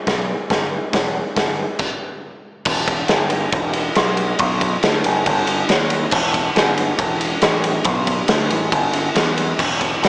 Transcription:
0.07 0.35 B1 medium
0.07 kick loud
0.07 snare loud
0.07 open hi-hat medium
0.50 0.78 G1 medium
0.50 kick loud
0.50 snare loud
0.50 open hi-hat medium
0.93 1.21 E1 loud
0.93 kick loud
0.93 snare loud
0.93 open hi-hat medium
1.36 1.64 G1 medium
1.36 kick loud
1.36 snare loud
1.36 open hi-hat medium
1.79 kick loud
1.79 crash medium
2.65 3.03 E1 medium
2.65 kick loud
2.65 crash loud
2.87 kick loud
2.87 ride medium
3.08 3.46 G1 medium
3.08 snare loud
3.08 ride loud
3.30 ride medium
3.52 3.89 E1 medium
3.52 kick loud
3.52 ride loud
3.73 ride medium
3.95 4.33 B1 medium
3.95 snare loud
3.95 ride loud
4.17 ride medium
4.39 4.76 B1 loud
4.39 kick loud
4.39 ride loud
4.61 kick medium
4.61 ride medium
4.83 5.02 D2 medium
4.83 snare loud
4.83 ride loud
5.04 5.23 F#1 medium
5.04 ride medium
5.26 5.63 G1 loud
5.26 kick loud
5.26 ride loud
5.47 ride medium
5.69 6.05 D#2 medium
5.69 snare loud
5.69 ride loud
5.90 ride medium
6.11 6.49 E1 loud
6.11 kick loud
6.11 crash loud
6.34 kick medium
6.34 ride medium
6.56 6.92 G1 medium
6.56 snare loud
6.56 ride loud
6.77 ride medium
6.98 7.35 E1 medium
6.98 kick loud
6.98 ride loud
7.21 ride medium
7.42 7.79 A1 loud
7.42 snare loud
7.42 ride loud
7.64 ride medium
7.84 8.22 B1 loud
7.84 kick loud
7.84 ride loud
8.07 kick medium
8.07 ride medium
8.28 8.47 D2 medium
8.28 snare loud
8.28 ride loud
8.50 8.68 A1 medium
8.50 ride medium
8.72 9.09 G1 medium
8.72 kick loud
8.72 ride loud
8.93 ride medium
9.15 9.52 E2 medium
9.15 snare loud
9.15 ride loud
9.38 ride medium
9.59 9.95 E1 medium
9.59 kick loud
9.59 crash loud
9.81 kick medium
9.81 ride medium
10.02 10.09 G1 medium
10.02 snare loud
10.02 ride loud

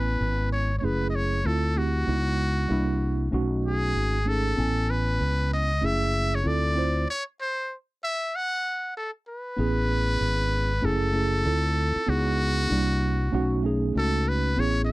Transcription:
0.00 0.17 A1 medium
0.00 0.70 B3 medium
0.00 0.70 C#4 medium
0.00 0.71 E4 medium
0.00 0.52 B4 medium
0.00 0.71 G#5 medium
0.20 0.80 G#1 medium
0.52 0.76 C#5 medium
0.79 1.38 A3 medium
0.79 1.39 C#4 medium
0.79 0.86 C#5 medium
0.83 1.42 F#1 medium
0.83 1.39 E4 medium
0.83 1.40 G#4 medium
0.83 1.09 B4 medium
1.10 1.17 D#5 medium
1.16 1.48 C#5 medium
1.44 2.05 D2 medium
1.44 1.73 A3 medium
1.44 1.73 C4 medium
1.44 1.74 E4 medium
1.44 1.74 F4 medium
1.44 1.79 A4 medium
1.75 2.04 A3 medium
1.75 2.05 C4 medium
1.75 2.05 E4 medium
1.75 3.39 F#4 medium
1.75 2.06 G4 medium
2.06 2.67 C#2 medium
2.06 2.70 G#3 medium
2.06 2.70 B3 medium
2.06 2.71 D#4 medium
2.06 2.70 E4 medium
2.68 3.30 C2 medium
2.68 3.26 G3 medium
2.68 3.26 A#3 medium
2.68 3.27 D4 medium
2.68 3.27 E4 loud
3.31 3.92 B1 medium
3.31 4.16 A3 medium
3.31 4.17 C#4 medium
3.31 4.17 D#4 medium
3.31 4.18 F#4 loud
3.65 4.30 G#4 loud
3.95 4.55 G#1 medium
4.25 4.54 A3 medium
4.25 4.55 C#4 medium
4.25 4.55 D#4 medium
4.25 4.56 G#4 medium
4.25 4.92 A4 medium
4.56 5.17 A1 loud
4.56 5.69 B3 medium
4.56 5.70 C#4 medium
4.56 5.71 E4 medium
4.56 5.71 G#5 medium
4.90 5.52 B4 medium
5.20 5.80 C#2 medium
5.53 5.87 D#5 medium
5.81 6.42 F#1 medium
5.81 6.38 A3 medium
5.81 6.39 C#4 medium
5.81 6.39 E4 medium
5.81 6.40 G#4 medium
5.81 6.37 E5 loud
6.35 6.49 C#5 medium
6.44 7.05 D2 medium
6.44 6.73 C4 medium
6.44 6.73 E4 medium
6.44 6.74 F4 medium
6.44 6.74 A4 medium
6.44 7.09 D5 loud
6.75 7.04 C4 medium
6.75 7.05 E4 medium
6.75 7.05 F4 medium
6.75 7.06 C5 medium
7.10 7.24 C#5 loud
7.41 7.74 C5 medium
8.04 8.37 E5 loud
8.36 8.96 F#5 loud
8.97 9.11 A4 medium
9.28 10.86 B4 loud
9.57 10.18 A1 loud
9.57 10.70 B3 medium
9.57 10.70 C#4 medium
9.57 10.71 E4 medium
9.57 10.71 G#4 medium
10.20 10.80 G#1 medium
10.81 11.43 F#1 medium
10.81 11.10 A3 medium
10.81 11.11 C#4 medium
10.81 11.11 E4 medium
10.81 11.12 G#4 medium
10.81 12.11 A4 loud
11.12 11.41 A3 medium
11.12 11.42 C#4 medium
11.12 11.43 E4 medium
11.12 11.43 G#4 medium
11.44 11.93 D2 medium
11.44 12.01 C4 medium
11.44 12.01 E4 medium
11.44 12.02 F4 medium
11.44 12.03 A4 medium
11.96 muted fretless electric bass stroke medium
12.06 12.67 C#2 loud
12.06 12.70 B3 medium
12.06 12.70 D#4 medium
12.06 12.70 E4 medium
12.06 13.70 F#4 loud
12.06 12.71 G#4 medium
12.69 13.30 C2 loud
12.69 13.28 G3 medium
12.69 13.26 A#3 medium
12.69 13.26 D4 medium
12.69 13.27 E4 medium
13.31 13.92 B1 loud
13.31 13.60 A3 medium
13.31 13.61 C#4 medium
13.31 13.61 D#4 medium
13.31 13.62 F#4 loud
13.63 13.92 A3 medium
13.63 13.92 C#4 medium
13.63 13.93 D#4 medium
13.63 13.93 G#4 medium
13.94 14.55 C#2 medium
13.94 14.51 A3 medium
13.94 14.52 C#4 medium
13.94 14.52 D#4 medium
13.94 14.53 F#4 medium
13.94 14.30 A4 loud
14.28 14.61 B4 loud
14.56 14.92 A1 loud
14.56 14.92 B3 medium
14.56 14.92 C#4 medium
14.56 14.92 E4 medium
14.56 14.92 G#4 medium
14.56 14.84 C#5 loud
14.85 14.92 D#5 medium

